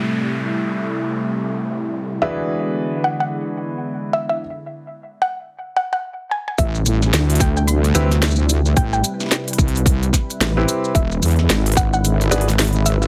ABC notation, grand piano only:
X:1
M:4/4
L:1/16
Q:"Swing 16ths" 1/4=110
K:Ador
V:1 name="Grand piano"
[A,,CEGB]16 | [E,DF^GB]16 | z16 | z8 z2 [CEGB] z4 z |
z12 z [CEGB]3 | z8 z2 [DF^GB] z4 z |]